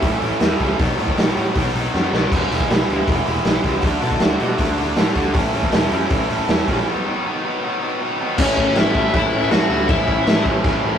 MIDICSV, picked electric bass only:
0, 0, Header, 1, 2, 480
1, 0, Start_track
1, 0, Tempo, 379027
1, 1004, Time_signature, 4, 2, 24, 8
1, 13906, End_track
2, 0, Start_track
2, 0, Title_t, "Picked electric bass"
2, 0, Program_c, 0, 34
2, 26, Note_on_c, 0, 33, 100
2, 179, Note_off_c, 0, 33, 0
2, 277, Note_on_c, 0, 33, 82
2, 427, Note_off_c, 0, 33, 0
2, 514, Note_on_c, 0, 40, 88
2, 665, Note_off_c, 0, 40, 0
2, 763, Note_on_c, 0, 37, 89
2, 912, Note_off_c, 0, 37, 0
2, 1000, Note_on_c, 0, 35, 86
2, 1150, Note_off_c, 0, 35, 0
2, 1247, Note_on_c, 0, 45, 88
2, 1395, Note_off_c, 0, 45, 0
2, 1482, Note_on_c, 0, 35, 79
2, 1632, Note_off_c, 0, 35, 0
2, 1720, Note_on_c, 0, 45, 89
2, 1871, Note_off_c, 0, 45, 0
2, 1972, Note_on_c, 0, 35, 90
2, 2120, Note_off_c, 0, 35, 0
2, 2199, Note_on_c, 0, 35, 87
2, 2350, Note_off_c, 0, 35, 0
2, 2455, Note_on_c, 0, 42, 91
2, 2602, Note_off_c, 0, 42, 0
2, 2692, Note_on_c, 0, 35, 84
2, 2841, Note_off_c, 0, 35, 0
2, 2933, Note_on_c, 0, 28, 99
2, 3081, Note_off_c, 0, 28, 0
2, 3180, Note_on_c, 0, 28, 84
2, 3327, Note_off_c, 0, 28, 0
2, 3421, Note_on_c, 0, 35, 79
2, 3567, Note_off_c, 0, 35, 0
2, 3655, Note_on_c, 0, 38, 87
2, 3804, Note_off_c, 0, 38, 0
2, 3895, Note_on_c, 0, 28, 95
2, 4044, Note_off_c, 0, 28, 0
2, 4131, Note_on_c, 0, 28, 84
2, 4281, Note_off_c, 0, 28, 0
2, 4373, Note_on_c, 0, 35, 93
2, 4522, Note_off_c, 0, 35, 0
2, 4613, Note_on_c, 0, 37, 94
2, 4763, Note_off_c, 0, 37, 0
2, 4844, Note_on_c, 0, 38, 90
2, 4997, Note_off_c, 0, 38, 0
2, 5088, Note_on_c, 0, 47, 86
2, 5240, Note_off_c, 0, 47, 0
2, 5340, Note_on_c, 0, 38, 84
2, 5488, Note_off_c, 0, 38, 0
2, 5578, Note_on_c, 0, 47, 86
2, 5726, Note_off_c, 0, 47, 0
2, 5814, Note_on_c, 0, 38, 90
2, 5964, Note_off_c, 0, 38, 0
2, 6060, Note_on_c, 0, 38, 83
2, 6209, Note_off_c, 0, 38, 0
2, 6291, Note_on_c, 0, 45, 90
2, 6442, Note_off_c, 0, 45, 0
2, 6526, Note_on_c, 0, 38, 87
2, 6772, Note_on_c, 0, 33, 98
2, 6791, Note_off_c, 0, 38, 0
2, 6923, Note_off_c, 0, 33, 0
2, 7021, Note_on_c, 0, 33, 89
2, 7169, Note_off_c, 0, 33, 0
2, 7253, Note_on_c, 0, 28, 89
2, 7404, Note_off_c, 0, 28, 0
2, 7494, Note_on_c, 0, 42, 92
2, 7644, Note_off_c, 0, 42, 0
2, 7733, Note_on_c, 0, 33, 88
2, 7884, Note_off_c, 0, 33, 0
2, 7979, Note_on_c, 0, 33, 88
2, 8127, Note_off_c, 0, 33, 0
2, 8210, Note_on_c, 0, 40, 91
2, 8361, Note_off_c, 0, 40, 0
2, 8454, Note_on_c, 0, 34, 87
2, 8604, Note_off_c, 0, 34, 0
2, 10618, Note_on_c, 0, 33, 94
2, 10818, Note_off_c, 0, 33, 0
2, 10849, Note_on_c, 0, 33, 95
2, 11053, Note_off_c, 0, 33, 0
2, 11079, Note_on_c, 0, 33, 91
2, 11488, Note_off_c, 0, 33, 0
2, 11568, Note_on_c, 0, 33, 101
2, 11771, Note_off_c, 0, 33, 0
2, 11812, Note_on_c, 0, 33, 97
2, 12012, Note_off_c, 0, 33, 0
2, 12044, Note_on_c, 0, 33, 90
2, 12247, Note_off_c, 0, 33, 0
2, 12277, Note_on_c, 0, 38, 89
2, 12483, Note_off_c, 0, 38, 0
2, 12523, Note_on_c, 0, 33, 105
2, 12726, Note_off_c, 0, 33, 0
2, 12763, Note_on_c, 0, 33, 93
2, 12965, Note_off_c, 0, 33, 0
2, 13007, Note_on_c, 0, 33, 94
2, 13408, Note_off_c, 0, 33, 0
2, 13479, Note_on_c, 0, 33, 106
2, 13681, Note_off_c, 0, 33, 0
2, 13714, Note_on_c, 0, 33, 91
2, 13906, Note_off_c, 0, 33, 0
2, 13906, End_track
0, 0, End_of_file